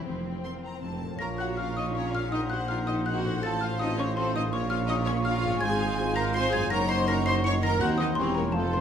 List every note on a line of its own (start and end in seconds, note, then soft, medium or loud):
0.00 0.15 A#3 soft
0.06 0.38 F1 soft
0.06 0.38 F1 medium
0.06 0.38 F2 soft
0.06 0.80 F3 soft
0.06 0.99 C4 medium
0.06 1.00 C4 soft
0.16 0.84 A#3 soft
0.25 1.00 F4 soft
0.35 1.10 C5 soft
0.45 0.84 A#4 soft
0.45 0.52 C6 medium
0.54 2.33 F5 soft
0.63 0.82 A#5 soft
0.63 1.21 C6 soft
0.73 0.84 A#5 soft
0.82 1.14 F1 soft
0.82 1.14 F2 medium
0.82 2.33 F3 soft
0.82 1.20 A5 soft
0.91 1.21 A3 soft
1.01 2.12 A#2 medium
1.01 1.09 F4 soft
1.06 3.37 A#3 soft
1.10 2.28 F4 soft
1.10 1.22 C5 soft
1.15 2.34 F4 medium
1.15 2.31 C#5 soft
1.15 1.37 A#6 medium
1.20 3.45 A#1 medium
1.20 3.39 A#1 medium
1.20 3.38 A#2 medium
1.20 1.38 A#4 medium
1.20 1.28 A#4 medium
1.20 2.28 C#5 medium
1.20 2.33 F5 medium
1.20 1.28 A#5 medium
1.38 1.57 F#4 medium
1.38 1.58 C#5 medium
1.38 1.47 F#5 medium
1.38 1.56 F#6 medium
1.57 1.70 C#4 medium
1.57 1.71 F4 medium
1.57 1.77 F4 medium
1.57 1.76 A#4 medium
1.57 1.76 F5 medium
1.57 1.75 F6 medium
1.76 1.95 D#4 medium
1.76 1.95 C#5 medium
1.76 1.84 D#5 medium
1.76 1.94 D#6 medium
1.95 2.13 C#4 medium
1.95 2.09 C#4 medium
1.95 2.08 F4 medium
1.95 2.12 A#4 medium
1.95 2.13 C#5 medium
1.95 2.12 C#6 medium
2.13 3.35 A#2 medium
2.13 2.32 F4 medium
2.13 2.31 C#5 medium
2.13 2.31 F5 medium
2.13 2.31 F6 medium
2.18 3.28 C4 medium
2.22 3.39 D#4 soft
2.27 2.48 A#4 medium
2.27 3.37 C5 soft
2.31 2.39 D#4 medium
2.31 3.42 D#4 medium
2.31 4.49 C5 medium
2.31 2.40 D#5 medium
2.31 3.42 F#5 medium
2.31 2.49 D#6 medium
2.50 2.59 F#4 medium
2.50 2.69 C5 medium
2.50 2.69 F#5 medium
2.50 2.67 F#6 medium
2.68 2.81 C4 medium
2.68 2.81 D#4 medium
2.68 2.77 F4 medium
2.68 2.87 A#4 medium
2.68 2.76 F5 medium
2.68 2.86 F6 medium
2.87 3.06 D#4 medium
2.87 3.05 C5 medium
2.87 2.95 D#5 medium
2.87 3.04 D#6 medium
3.05 3.20 C4 medium
3.05 3.21 D#4 medium
3.05 3.42 F#4 medium
3.05 3.23 A#4 medium
3.05 3.42 F#5 medium
3.05 3.40 F#6 medium
3.25 4.45 A2 medium
3.25 3.43 C5 medium
3.29 4.47 C4 soft
3.34 4.42 F4 medium
3.38 4.52 C5 soft
3.43 4.52 A1 medium
3.43 4.53 A1 medium
3.43 4.53 A2 medium
3.43 5.58 F4 medium
3.43 3.60 A4 medium
3.43 3.50 A4 medium
3.43 5.37 F5 medium
3.43 3.61 A5 medium
3.43 3.60 A6 loud
3.61 3.69 F4 medium
3.61 3.80 C5 medium
3.61 3.80 F5 medium
3.61 3.78 F6 medium
3.79 3.93 C4 medium
3.79 3.87 D#4 medium
3.79 3.93 F4 medium
3.79 3.98 A4 medium
3.79 3.98 D#5 medium
3.79 3.96 D#6 medium
3.98 4.05 C#4 medium
3.98 4.16 C5 medium
3.98 4.17 C#5 medium
3.98 4.16 C#6 medium
4.15 4.34 C4 medium
4.15 4.29 C4 medium
4.15 4.30 F4 medium
4.15 4.32 A4 medium
4.15 4.34 C5 medium
4.15 4.33 C6 medium
4.34 5.54 A#2 medium
4.34 4.41 D#4 medium
4.34 4.52 C5 medium
4.34 4.42 D#5 medium
4.34 4.52 D#6 medium
4.39 5.56 C#4 medium
4.43 5.51 F4 medium
4.48 5.61 A#1 medium
4.48 5.61 A#4 medium
4.52 5.61 A#1 medium
4.52 5.62 A#2 medium
4.52 4.59 C#4 medium
4.52 4.69 A#4 medium
4.52 5.63 C#5 medium
4.52 4.71 C#5 medium
4.52 4.70 C#6 medium
4.70 4.77 F4 medium
4.70 4.89 C#5 medium
4.70 4.78 F5 medium
4.70 4.87 F6 loud
4.87 5.03 C#4 medium
4.87 4.96 D#4 loud
4.87 5.03 F4 medium
4.87 5.07 A#4 medium
4.87 4.95 D#5 loud
4.87 5.06 D#6 medium
5.05 5.15 C#4 medium
5.05 5.12 C#5 medium
5.05 5.25 C#5 medium
5.05 5.24 C#6 loud
5.22 5.39 C#4 medium
5.22 5.38 F4 medium
5.22 5.61 F4 medium
5.22 5.42 A#4 medium
5.22 5.59 F5 medium
5.22 5.59 F6 medium
5.43 6.64 G#2 medium
5.43 5.62 C#5 medium
5.48 6.66 C4 medium
5.52 6.68 F4 medium
5.57 6.69 G#1 medium
5.57 6.72 F4 medium
5.57 6.70 C5 medium
5.57 6.73 F5 medium
5.57 6.14 G#5 loud
5.57 6.12 G#6 loud
5.61 6.69 G#1 medium
5.61 6.69 G#2 medium
5.61 6.16 G#4 medium
5.61 6.71 C5 medium
5.61 5.79 G#5 medium
5.80 5.98 F5 medium
5.97 6.13 C4 medium
5.97 6.12 F4 medium
5.97 6.16 G#5 medium
6.15 6.34 A#4 loud
6.15 6.34 F5 medium
6.15 6.23 A#5 loud
6.15 6.33 A#6 loud
6.34 6.49 C4 medium
6.34 6.49 F4 medium
6.34 6.52 C5 loud
6.34 6.52 G#5 medium
6.34 6.42 C6 loud
6.34 6.51 C7 loud
6.52 7.73 F#2 medium
6.52 6.71 G#4 loud
6.52 6.71 F5 medium
6.52 6.71 G#5 loud
6.52 6.70 G#6 loud
6.57 7.66 A#3 medium
6.61 7.70 D#4 medium
6.66 7.80 C#5 medium
6.70 7.79 F#1 medium
6.70 7.82 F#1 medium
6.70 7.79 F#2 medium
6.70 7.63 D#4 medium
6.70 6.79 A#4 loud
6.70 6.89 C#5 medium
6.70 7.64 C#5 medium
6.70 7.79 F#5 medium
6.70 6.89 A#5 loud
6.70 6.88 A#6 loud
6.89 7.08 C5 loud
6.89 7.08 D#5 medium
6.89 7.08 C6 medium
6.89 7.06 C7 loud
7.07 7.21 C#4 medium
7.07 7.21 D#4 medium
7.07 7.15 A#4 loud
7.07 7.26 C#5 medium
7.07 7.26 A#5 loud
7.07 7.25 A#6 loud
7.26 7.44 C5 medium
7.26 7.44 D#5 medium
7.26 7.34 C6 loud
7.26 7.43 C7 loud
7.43 7.59 C#4 medium
7.43 7.59 D#4 medium
7.43 7.61 C#5 medium
7.43 7.52 C#5 loud
7.43 7.52 C#6 loud
7.43 7.61 C#7 loud
7.63 8.10 D#3 medium
7.63 7.81 A#4 medium
7.63 7.81 D#5 medium
7.63 7.81 A#5 loud
7.63 7.80 A#6 loud
7.67 8.03 A#3 medium
7.72 8.15 D#4 medium
7.76 8.15 C4 medium
7.76 8.15 D#4 medium
7.76 8.17 C5 medium
7.76 8.15 F#5 medium
7.80 8.17 D#2 medium
7.80 8.18 D#2 medium
7.80 8.20 D#4 medium
7.80 8.00 F#4 loud
7.80 7.99 A#4 medium
7.80 8.20 C5 medium
7.80 7.88 F#5 loud
7.80 7.98 F#6 loud
7.98 8.48 E3 medium
7.98 8.07 D#4 medium
7.98 8.18 C5 medium
7.98 8.07 D#5 medium
7.98 8.16 D#6 medium
8.04 8.50 A#3 medium
8.09 8.53 G4 medium
8.13 8.55 G4 medium
8.13 8.55 C#5 medium
8.13 8.55 G5 medium
8.13 8.34 C6 loud
8.17 8.56 E1 medium
8.17 8.55 E1 medium
8.17 8.55 E2 medium
8.17 8.37 C4 loud
8.17 8.55 C#4 medium
8.17 8.57 E4 medium
8.17 8.36 A#4 medium
8.17 8.26 C5 medium
8.17 8.55 C#5 medium
8.35 8.81 F3 medium
8.35 8.56 A#3 medium
8.35 8.44 A#4 medium
8.35 8.53 A#5 medium
8.39 8.81 C4 medium
8.39 8.57 C#5 medium
8.46 8.81 F4 soft
8.51 8.81 C5 soft
8.51 8.81 F5 medium
8.51 8.71 A5 medium
8.55 8.81 F1 medium
8.55 8.81 F2 medium
8.55 8.63 A3 medium
8.55 8.81 C4 medium
8.55 8.81 F4 medium
8.55 8.74 A4 medium
8.55 8.81 C5 medium
8.73 8.81 A#2 medium
8.73 8.81 C4 medium
8.73 8.81 C5 medium
8.73 8.81 C6 medium